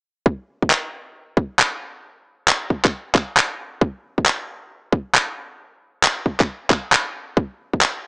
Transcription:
0.26 kick
0.62 kick
0.70 clap
1.37 kick
1.59 clap
2.48 clap
2.70 kick
2.85 kick, clap
3.15 kick, clap
3.37 clap
3.81 kick
4.18 kick
4.26 clap
4.92 kick
5.15 clap
6.03 clap
6.26 kick
6.40 kick, clap
6.70 kick, clap
6.92 clap
7.37 kick
7.73 kick
7.81 clap

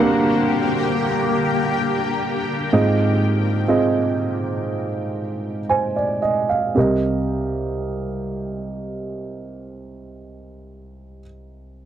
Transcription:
Already playing: G2 D3 A#3 G4 D5
0.00 A#3 D4 G4 A#4
2.73 G#2 C4 F4 G#4 D#5
3.68 C4 F4 G#4 D#5
5.69 C5 G#5
5.96 D5
6.22 D#5
6.49 F5
6.75 C2 C4 G4 A#4
6.79 D#5

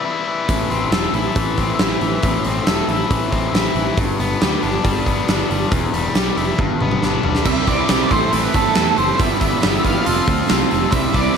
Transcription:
Already playing: E3 G3 G4
0.05 E4
0.27 E3
0.49 A1 A2, kick, open hi-hat
0.70 A1 C4, open hi-hat
0.91 E1 A4, snare, open hi-hat
1.13 A1 E4, open hi-hat
1.36 A1 E3, kick, open hi-hat
1.58 A1 C4, kick, open hi-hat
1.79 A1 E4, snare, open hi-hat
2.01 A1 E3, open hi-hat
2.23 A1 A2, kick, open hi-hat
2.44 A1 C4, open hi-hat
2.67 E1 A4, snare, open hi-hat
2.88 A1 E4, open hi-hat
3.11 A1 E3, kick, open hi-hat
3.32 A1 C4, kick, open hi-hat
3.53 A1 E4, snare, open hi-hat
3.75 A1 E3, open hi-hat
3.97 G1 G2, kick, open hi-hat
4.19 G1 B3, open hi-hat
4.41 D2 G4, snare, open hi-hat
4.63 G1 D4, open hi-hat
4.84 G1 G3, kick, open hi-hat
5.06 G1 B3, kick, open hi-hat
5.28 G1 D4, snare, open hi-hat
5.50 G1 G3, open hi-hat
5.72 E1 E2, kick, open hi-hat
5.94 E1 G3, open hi-hat
6.15 B1 G4, snare, open hi-hat
6.37 F1 E4, open hi-hat
6.58 G1 G2, kick, high tom
6.81 G1 B3, mid tom
6.91 mid tom
7.02 G1 D4, snare
7.23 B1 G3, floor tom
7.35 snare
7.45 C2 C3 E3 G3 C4 E4 G4 E5, kick, crash
7.66 C2 C3 E3 G3 C4 E4 G4 D5, kick, open hi-hat
7.77 G3 C4 E4
7.89 B1 C3 E3 G3 C4 E4 G4, snare, open hi-hat
7.98 G3 C4 E4
8.10 A1 A2 E3 A3 B3 C4 E4 A4 C5, kick, open hi-hat
8.32 A1 A2 E3 A3 C4 E4 A4 B4, open hi-hat
8.42 B3 C4 E4
8.54 G1 A2 E3 A3 B3 C4 E4 A4, kick, open hi-hat
8.63 C4 E4
8.75 E2 A2 E3 A3 B3 C4 E4 A4, snare, open hi-hat
8.97 F#1 A2 E3 A3 B3 C4 E4 A4 C5, open hi-hat
9.07 B3 C4 E4
9.18 G1 E2 B2 E3 G3 B3 E4 G4 E5, kick, open hi-hat
9.40 G1 E2 B2 E3 G3 B3 E4 G4, kick, open hi-hat
9.49 B3 E4 G4
9.62 G1 E2 B2 E3 G3 B3 E4 G4, snare, open hi-hat
9.72 B3 E4 G4
9.83 G1 E2 B2 E3 G3 B3 E4 G4 F5, kick, open hi-hat
9.93 B3 E4 G4
10.04 F1 F2 C3 F3 A3 C4 F4 A4, open hi-hat
10.15 F3 A3 C4 F4
10.26 D2 F2 C3 F3 A3 C4 F4 A4, kick, open hi-hat
10.36 F3 A3 C4 F4
10.47 F2 C3 F3 A3 C4 F4 A4, snare, open hi-hat
10.51 C2
10.70 F1 F2 C3 F3 A3 C4 F4 A4, open hi-hat
10.92 C2 C3 E3 G3 C4 E4 G4 E5, kick, open hi-hat
11.12 C2 C3 E3 G3 C4 E4 G4 D5, kick, open hi-hat
11.24 G3 C4 E4
11.34 C3

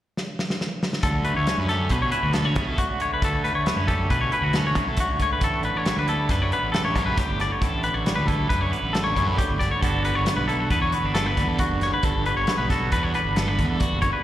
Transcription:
0.17 snare
0.39 snare
0.50 snare
0.61 snare
0.83 snare
0.93 snare
1.03 D2 D3 A4, kick, closed hi-hat
1.25 A3 B4, closed hi-hat
1.36 D2 C#5
1.47 C#4, snare, closed hi-hat
1.58 F#2 B4
1.69 G4 A4, snare, closed hi-hat
1.89 B2 C#4 B4, kick, closed hi-hat
2.02 C#5
2.12 E4 B4, closed hi-hat
2.23 D2 F#4
2.33 B3 A4, snare, closed hi-hat
2.45 C#4 C#5
2.56 B2 A3, kick, closed hi-hat
2.67 A4
2.77 D3 F#4, kick, closed hi-hat
2.88 C#2
3.00 A3 C#5, closed hi-hat
3.14 B4
3.22 D2 D3 A4, kick, closed hi-hat
3.44 A3 B4, closed hi-hat
3.54 D2 C#5
3.66 B3, snare, closed hi-hat
3.76 F#2 C#4 B4
3.88 G4 A4, kick, closed hi-hat
4.10 B2 C#4 B4, kick, closed hi-hat
4.21 C#5
4.32 E4 B4, closed hi-hat
4.41 D2 F#4
4.53 C#4 A4, snare, closed hi-hat
4.67 C#5
4.75 B2 A3, kick, closed hi-hat
4.88 A4
4.97 D3 F#4, kick, closed hi-hat
5.08 C#2
5.20 A3 C#5, kick, closed hi-hat
5.33 B4
5.40 A1 A2 A4, kick, closed hi-hat
5.62 D3 B4, closed hi-hat
5.75 A1 C#5
5.86 G3, snare, closed hi-hat
5.95 D2 B4
6.07 E4 A4, closed hi-hat
6.29 F#2 G3 B4, kick, snare, closed hi-hat
6.42 C#5
6.52 B3 B4, closed hi-hat
6.61 A1
6.72 G3 A4, snare, closed hi-hat
6.85 C#5
6.94 F#2 D3, kick, closed hi-hat
7.06 B4
7.17 A2 G4, kick, snare, closed hi-hat
7.28 G1
7.40 D3 D5, snare, closed hi-hat
7.52 C#5
7.61 A1 A2 A4, kick, closed hi-hat
7.83 D3 B4, closed hi-hat
7.94 A1 C#5
8.06 G3, snare, closed hi-hat
8.16 D2 B4
8.27 E4 A4, kick, closed hi-hat
8.49 F#2 G3 B4, kick, closed hi-hat
8.61 C#5
8.71 B3 B4, closed hi-hat
8.83 A1
8.93 G3 A4, snare, closed hi-hat
9.04 C#5
9.16 F#2 D3, kick, closed hi-hat
9.27 B4
9.36 A2 G4, kick, closed hi-hat
9.48 G1
9.59 D3 D5, kick, snare, closed hi-hat
9.71 C#5
9.81 G1 G2 D3 B3 D4 F#4 A4, kick, closed hi-hat
10.03 D3 B4, closed hi-hat
10.15 G1 C#5
10.26 B3, snare, closed hi-hat
10.36 B1 B4
10.48 E4 A4, closed hi-hat
10.60 F#4
10.70 E2 B3 B4, kick, closed hi-hat
10.82 C#5
10.92 B3 B4, closed hi-hat
11.03 G1 D4
11.14 B3 A4, snare, closed hi-hat
11.26 B4
11.37 E2 D3, kick, closed hi-hat
11.48 A4
11.58 G2 F#4, kick, closed hi-hat
11.69 F#1
11.81 D3 C#5, snare, closed hi-hat
11.94 B4
12.03 G1 G2 A4, kick, closed hi-hat
12.26 D3 B4, closed hi-hat
12.36 G1 C#5
12.47 B3, snare, closed hi-hat
12.58 B1 B4
12.70 F#4 A4, kick, snare, closed hi-hat
12.92 E2 B3 B4, kick, closed hi-hat
13.03 C#5
13.14 D4 B4, closed hi-hat
13.25 G1
13.36 B3 A4, snare, closed hi-hat
13.48 B4
13.59 E2 D3, kick, closed hi-hat
13.70 A4
13.80 G2 F#4, kick, closed hi-hat
13.92 F#1
14.02 F#2 C#5, kick, closed hi-hat
14.13 B4

